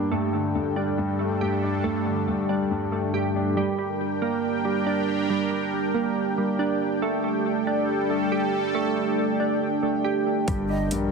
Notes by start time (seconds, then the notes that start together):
Already playing: G2 D3 G3 A#3 D4 G4 G5
0.11 G2 G3 A3 D4 A4
0.33 D3 A3
0.55 G2
0.76 G3 D4
0.98 G2
1.19 A3
1.41 G2 G4
1.63 D4
1.84 G2 A3
2.05 D3 A3
2.27 G2
2.49 G3 D4
2.71 G2
2.92 A3
3.13 G2 G4
3.36 D4
3.57 G3 D4 G4 A#4 G5
3.79 G3
4.22 A#3
4.65 G3
4.86 D4
5.30 G3
5.51 G3
5.94 A#3
6.38 G3
6.59 D4
7.02 G3 A3 A4
7.24 A3
7.67 D4
8.10 A3
8.32 G4
8.75 A3
8.96 A3
9.40 D4
9.83 A3
10.04 G4
10.48 G1 G2 G3 A#4, kick, closed hi-hat
10.69 D3 G3 D#5
10.91 A#1 G2, closed hi-hat